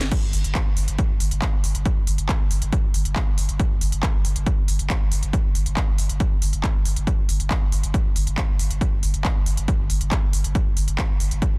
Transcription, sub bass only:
0.01 G1
0.23 G1
0.33 G1
0.44 G1
0.66 G1
0.77 G1
0.88 G1
1.10 G1
1.20 G1
1.31 G1
1.53 G1
1.64 G1
1.75 G1
1.97 G1
2.07 G1
2.18 G1
2.40 G1
2.51 G1
2.62 G1
2.84 G1
2.94 G1
3.05 G1
3.27 G1
3.38 G1
3.49 G1
3.71 G1
3.81 G1
3.92 G1
4.14 G1
4.25 G1
4.36 G1
4.58 G1
4.68 G1
4.79 G1
5.01 G1
5.12 G1
5.23 G1
5.45 G1
5.55 G1
5.66 G1
5.88 G1
5.98 G1
6.10 G1
6.31 G1
6.42 G1
6.53 G1
6.75 G1
6.85 G1
6.96 G1
7.18 G1
7.29 G1
7.40 G1
7.62 G1
7.72 G1
7.83 G1
8.05 G1
8.16 G1
8.27 G1
8.49 G1
8.59 G1
8.70 G1
8.92 G1
9.03 G1
9.14 G1
9.36 G1
9.46 G1
9.57 G1
9.79 G1
9.90 G1
10.01 G1
10.23 G1
10.33 G1
10.44 G1
10.66 G1
10.77 G1
10.88 G1
11.09 G1
11.20 G1
11.31 G1
11.53 G1

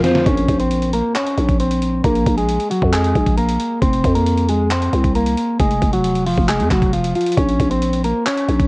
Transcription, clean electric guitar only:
0.04 F3 F4
0.26 C#4 C#5
0.60 C4 C5
0.93 A#3 A#4
1.15 C#4 C#5
1.60 C4 C5
2.04 A#3 A#4
2.37 G#3 G#4
2.71 F#3 F#4
2.93 G#3 G#4
3.38 A#3 A#4
3.82 C4 C5
4.15 A#3 A#4
4.49 G#3 G#4
4.71 C4 C5
5.15 A#3 A#4
5.60 G#3 G#4
5.93 F#3 F#4
6.26 F3 F4
6.48 G#3 G#4
6.70 F#3 F#4
6.93 F3 F4
7.15 F3 F4
7.37 C#4 C#5
7.71 C4 C5
8.04 A#3 A#4
8.26 C#4 C#5

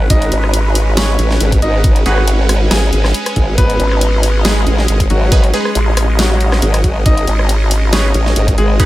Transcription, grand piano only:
0.10 D#4 D#5
0.97 C#4 C#5
1.62 D#4 D#5
2.06 F#4 F#5
2.71 G#4 G#5
3.58 B3 B4
4.45 G#3 G#4
5.10 F#3 F#4
5.54 G#3 G#4
6.19 F#3 F#4
7.06 D#4 D#5
7.93 C#4 C#5
8.58 G#3 G#4

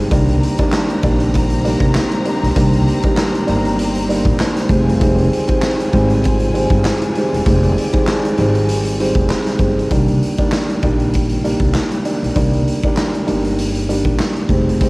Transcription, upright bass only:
0.11 C2
1.04 A#1
1.81 C2
2.43 B1
2.56 C2
3.49 G1
4.26 A#1
4.70 F1
5.93 G#1
6.70 G1
7.33 E1
7.46 F1
8.39 G#1
9.15 F1
9.59 G1
9.91 C2
10.83 A#1
11.60 C2
12.23 B1
12.36 C2
13.29 G1
14.05 A#1
14.49 F1

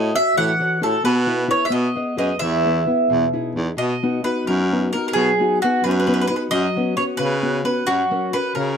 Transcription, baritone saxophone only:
Already playing: A2
0.36 A2
0.82 A2
1.04 B2
1.72 B2
2.17 F#2
2.39 E2
3.10 E2
3.55 E2
3.78 B2
4.47 F#2
5.14 B2
5.83 F#2
6.51 F#2
7.19 C#3
7.87 F#2
8.56 C#3

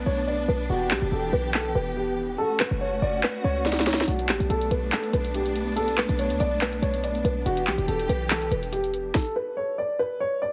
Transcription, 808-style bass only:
0.06 B1
0.49 B1
0.70 E1
0.91 B1
1.02 E1
1.12 E1
1.33 B1
1.75 E1
2.71 F#1
3.02 F#1
3.44 C#2
4.08 B1
4.29 A1
4.40 B1
4.50 B1
4.71 B1
5.13 B1
6.09 B1
6.30 D2
6.40 B1
6.82 B1
7.25 B1
7.46 E1
7.67 B1
7.78 E1
7.88 E1
8.09 B1
8.51 E1

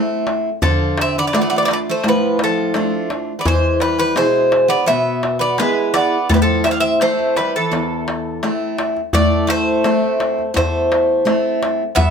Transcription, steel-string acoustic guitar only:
Already playing: A3 C4 E4
0.62 D3
1.34 A3 D4 F4
2.04 A2
2.74 A3 D4 F4
3.45 E3
4.16 B2 E4 G#4
4.89 B2
5.59 B3 E4 G#4
6.29 A2
7.01 A3 C4 E4
7.71 E2
8.43 A3 C4 E4
9.14 A2
9.84 A3 C4 E4
10.54 E2
11.25 A3 C4 E4
11.96 G2

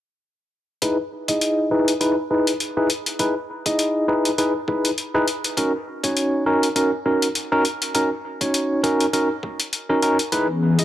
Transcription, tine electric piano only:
0.82 D#4 E4 G#4 B4
1.28 D#4 E4 G#4 D#5
1.71 D#4 E4 G#4 B4
2.01 D#4 E4 G#4 B4
2.30 D#4 E4 G#4 B4
2.77 D#4 E4 G#4 B4
3.20 D#4 E4 G#4 B4
3.66 D#4 E4 G#4 D#5
4.08 D#4 E4 G#4 B4
4.38 D#4 E4 G#4 B4
4.68 D#4 E4 G#4 B4
5.14 D#4 E4 G#4 B4
5.57 C#4 D#4 F#4 A#4
6.04 C#4 D#4 F#4 C#5
6.46 C#4 D#4 F#4 A#4
6.76 C#4 D#4 F#4 A#4
7.06 C#4 D#4 F#4 A#4
7.52 C#4 D#4 F#4 A#4
7.95 C#4 D#4 F#4 A#4
8.41 C#4 D#4 F#4 C#5
8.84 C#4 D#4 F#4 A#4
9.13 C#4 D#4 F#4 A#4
9.89 C#4 D#4 F#4 A#4
10.03 C#4 D#4 F#4 A#4
10.32 D#4 E4 G#4 B4
10.79 D#4 E4 G#4 D#5

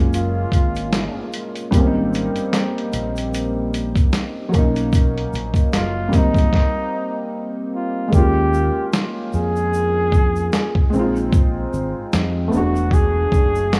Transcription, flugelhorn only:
0.14 F4
5.75 F4
6.15 D#4
7.75 F4
8.14 G4
9.34 G#4
12.55 F#4
12.94 G#4
13.74 F#4

